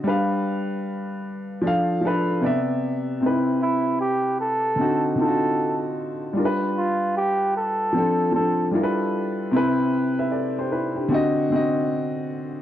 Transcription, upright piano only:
0.04 1.26 G3 medium
0.04 1.27 D4 medium
0.04 1.28 B4 medium
0.09 1.29 F5 medium
1.61 1.96 F3 medium
1.61 1.97 D4 medium
1.61 1.98 A4 medium
1.67 1.99 F5 loud
2.01 2.41 F3 medium
2.01 2.42 D4 medium
2.01 2.43 A4 medium
2.07 2.44 B4 medium
2.41 3.09 C3 medium
2.41 3.09 B3 medium
2.41 3.10 D5 medium
2.46 3.11 E5 medium
3.21 4.43 C3 medium
3.21 4.44 C4 medium
3.21 3.31 D#4 medium
3.26 4.46 B4 medium
3.31 4.48 E4 medium
4.76 5.11 D3 medium
4.76 5.12 C4 medium
4.76 5.13 D#4 medium
4.81 5.14 F#4 medium
5.16 6.11 D3 medium
5.16 6.12 C4 medium
5.16 6.13 D#4 medium
5.21 5.28 F4 medium
5.28 6.17 F#4 medium
6.33 7.57 G3 medium
6.33 7.58 D4 medium
6.33 7.59 F4 medium
6.39 6.46 A#4 medium
6.45 7.63 B4 medium
7.93 8.27 F3 medium
7.93 8.28 C4 medium
7.93 8.29 D4 medium
7.98 8.30 A4 medium
8.32 8.73 F3 medium
8.32 8.74 C4 medium
8.32 8.71 D4 medium
8.37 8.74 A4 medium
8.71 9.40 G3 medium
8.71 9.40 D4 medium
8.71 9.41 E4 medium
8.71 9.41 F4 medium
8.76 9.42 A4 medium
8.76 8.84 A#4 medium
8.83 9.46 B4 medium
9.51 10.74 C3 medium
9.51 10.75 C4 medium
9.51 9.93 E4 medium
9.56 9.94 B4 medium
10.19 10.32 B4 medium
10.19 10.32 E5 medium
10.31 10.55 A4 medium
10.31 10.55 D5 medium
10.59 10.72 G4 medium
10.59 10.72 C5 medium
10.72 10.95 E4 medium
10.72 10.95 B4 medium
10.95 11.33 D4 medium
10.95 11.33 G4 medium
11.09 11.43 D3 loud
11.09 11.44 C4 medium
11.09 11.45 F#4 medium
11.14 11.46 D#5 loud
11.50 12.44 D3 medium
11.50 12.45 C4 medium
11.50 12.46 F#4 medium
11.56 12.47 D#5 medium

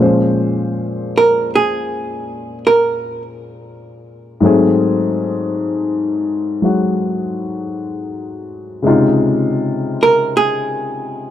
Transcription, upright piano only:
0.00 4.42 A#2 soft
0.00 4.42 F3 soft
0.00 4.43 G#3 soft
0.00 4.43 C#4 soft
0.00 4.44 C5 medium
4.40 8.84 G#2 medium
4.40 6.61 F#3 soft
4.40 8.86 A3 medium
4.45 8.86 C4 soft
4.45 8.87 G#4 medium
6.62 8.84 F#3 soft
6.62 8.82 G#3 soft
6.62 8.86 F#4 soft
8.82 11.31 C3 medium
8.82 11.31 C#3 medium
8.82 11.31 G#3 medium
8.87 11.31 D#4 medium
8.87 11.31 F4 medium

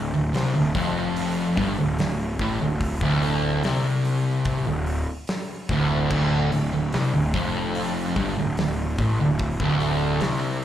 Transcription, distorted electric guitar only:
0.00 0.13 D2 medium
0.14 0.33 D2 medium
0.34 0.53 C3 loud
0.54 0.75 D2 medium
0.76 1.56 F2 loud
1.57 1.77 G2 loud
1.79 1.99 D2 medium
2.00 2.32 D2 medium
2.41 2.60 A2 loud
2.61 2.94 D2 medium
3.02 3.62 D2 loud
3.64 4.66 C3 loud
4.67 5.00 D2 medium
5.70 6.10 D2 loud
6.11 6.51 D2 loud
6.52 6.72 D2 medium
6.73 6.93 D2 medium
6.94 7.13 C3 loud
7.13 7.34 D2 medium
7.35 8.15 F2 loud
8.17 8.36 G2 loud
8.38 8.57 D2 medium
8.59 8.91 D2 medium
9.00 9.18 A2 loud
9.20 9.53 D2 medium
9.61 10.21 D2 loud
10.22 10.65 C3 loud

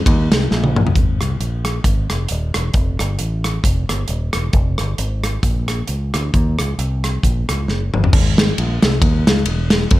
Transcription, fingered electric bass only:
0.06 0.28 D#2 loud
0.33 0.49 C2 medium
0.52 0.89 A#1 medium
0.96 1.17 G#1 medium
1.21 1.38 C2 medium
1.40 1.78 A#1 medium
1.84 2.06 G#1 medium
2.11 2.27 F1 medium
2.31 2.52 D#1 medium
2.56 2.72 E1 medium
2.74 2.96 F1 medium
3.00 3.17 G1 medium
3.20 3.58 A1 medium
3.64 3.86 F1 medium
3.89 4.06 G1 medium
4.09 4.31 D#1 medium
4.35 4.51 E1 medium
4.54 4.75 F1 medium
4.80 4.96 G1 medium
4.98 5.37 G#1 medium
5.43 5.81 A#1 medium
5.89 6.11 C#2 medium
6.14 6.31 D2 medium
6.34 6.56 D#2 medium
6.60 6.76 C#2 medium
6.79 7.17 C2 medium
7.24 7.45 A#1 medium
7.49 7.66 C#2 medium
7.68 7.90 F#1 medium
7.95 8.11 G1 medium
8.13 8.51 G#1 loud
8.58 8.80 A#1 medium
8.83 9.00 C2 medium
9.01 9.23 D#2 loud
9.28 9.44 C#2 medium
9.47 9.85 E1 medium
9.91 10.00 F2 loud

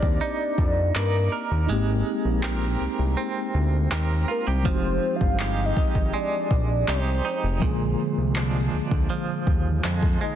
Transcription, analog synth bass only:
0.03 0.19 D#2 medium
0.58 0.92 F2 medium
0.96 1.29 G2 medium
1.51 1.68 D#2 medium
1.70 2.03 G#1 loud
2.25 2.76 A#1 medium
2.80 2.88 C2 medium
2.99 3.16 C2 medium
3.54 3.88 D2 medium
3.92 4.25 D#2 medium
4.47 4.67 C2 medium
4.66 4.99 F1 loud
5.21 5.73 G1 medium
5.77 5.84 G#1 soft
5.95 6.12 G#1 medium
6.51 6.84 A#1 medium
6.88 7.21 C2 medium
7.43 7.60 F1 medium
7.62 7.95 A#1 loud
8.18 8.69 C2 medium
8.73 8.81 D2 soft
8.92 9.08 D2 medium
9.47 9.80 D#2 medium
9.85 10.18 F2 medium

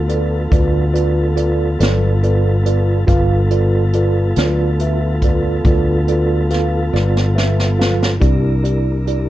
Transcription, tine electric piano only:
0.08 0.41 F4 medium
0.08 0.41 A4 medium
0.08 0.41 B4 soft
0.08 0.41 D5 medium
0.51 0.84 F4 medium
0.51 0.84 A4 medium
0.51 0.84 B4 medium
0.51 0.84 D5 medium
0.94 1.26 F4 medium
0.94 1.26 A4 medium
0.94 1.26 B4 medium
0.94 1.26 D5 medium
1.36 1.69 F4 medium
1.36 1.69 A4 medium
1.36 1.69 B4 medium
1.36 1.69 D5 medium
1.79 2.12 F4 medium
1.79 2.12 A4 medium
1.79 2.12 B4 medium
1.79 2.13 D5 medium
2.23 2.55 F4 medium
2.23 2.55 A4 medium
2.23 2.55 B4 medium
2.23 2.56 D5 medium
2.65 2.98 F4 medium
2.65 2.98 A4 medium
2.65 2.98 B4 medium
2.65 2.98 D5 medium
3.07 3.40 F4 medium
3.07 3.40 A4 medium
3.07 3.40 B4 medium
3.07 3.40 F5 medium
3.51 3.83 F4 medium
3.51 3.83 A4 medium
3.51 3.83 B4 medium
3.51 3.83 D5 medium
3.94 4.26 F4 medium
3.94 4.26 A4 medium
3.94 4.26 B4 medium
3.94 4.26 D5 medium
4.37 4.69 F4 medium
4.37 4.69 A4 medium
4.37 4.69 B4 medium
4.37 4.69 D5 medium
4.80 5.12 F4 medium
4.80 5.12 A4 soft
4.80 5.12 B4 medium
4.80 5.12 E5 medium
5.24 5.55 F4 medium
5.24 5.55 A4 medium
5.24 5.55 B4 medium
5.24 5.56 D5 medium
5.65 5.97 F4 medium
5.65 5.97 A4 soft
5.65 5.98 B4 soft
5.65 5.98 D5 medium
6.08 6.40 F4 medium
6.08 6.40 A4 medium
6.08 6.40 B4 soft
6.08 6.40 D5 medium
6.50 6.83 F4 medium
6.50 6.83 A4 soft
6.50 6.83 B4 medium
6.50 6.83 F5 medium
6.93 7.25 F4 medium
6.93 7.25 A4 medium
6.93 7.26 B4 medium
6.93 7.26 D5 medium
7.35 7.68 F4 medium
7.35 7.68 A4 soft
7.35 7.68 B4 soft
7.35 7.68 E5 medium
7.78 8.11 F4 medium
7.78 8.11 A4 soft
7.78 8.11 B4 soft
7.78 8.11 F5 medium
8.20 8.53 E4 medium
8.20 8.53 G4 medium
8.20 8.53 A#4 medium
8.20 8.54 D5 medium
8.63 8.96 E4 medium
8.63 8.96 G4 soft
8.63 8.96 A#4 soft
8.63 8.96 D5 medium
9.07 9.29 E4 soft
9.07 9.29 G4 soft
9.07 9.29 A#4 medium
9.07 9.29 D5 medium

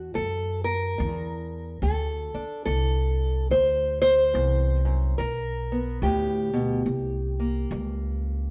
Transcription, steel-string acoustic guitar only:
0.00 1.65 D4 soft
0.00 0.15 F#4 medium
0.14 0.92 D2 medium
0.14 0.64 A4 medium
0.64 1.82 A#4 loud
0.98 1.76 D3 medium
1.83 2.60 D2 medium
1.83 2.64 A4 medium
2.34 5.15 D4 soft
2.65 3.44 D3 medium
2.65 3.50 A4 loud
3.51 4.29 D2 medium
3.51 4.00 C5 loud
4.02 5.18 C5 loud
4.34 4.85 E2 medium
4.85 5.18 F#2 medium
5.18 5.97 G2 medium
5.18 6.02 A#4 medium
5.72 6.84 B3 soft
6.03 6.53 A2 medium
6.03 8.51 G4 medium
6.53 6.86 B2 medium
6.86 7.64 C3 medium
7.40 8.51 A#3 medium
7.72 8.49 G3 medium

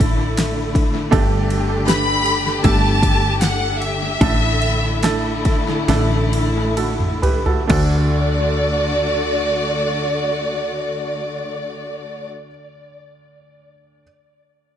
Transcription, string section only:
0.00 4.17 D3 medium
0.00 4.17 A3 medium
0.00 1.09 E4 medium
1.13 4.18 G4 medium
4.21 7.67 D3 medium
4.21 7.66 A3 medium
4.21 7.67 E4 medium
7.70 12.28 D3 medium
7.70 12.28 A3 medium
7.70 12.28 F#4 medium

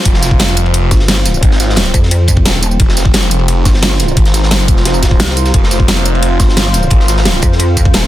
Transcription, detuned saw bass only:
0.05 0.38 F1 medium
0.40 0.90 F1 loud
1.43 1.93 G#1 loud
2.80 3.13 F1 loud
3.14 3.64 F1 loud
4.17 4.67 G#1 loud
4.68 5.18 F1 loud
5.54 5.87 F1 loud
5.88 6.38 F1 loud
6.91 7.41 G#1 loud

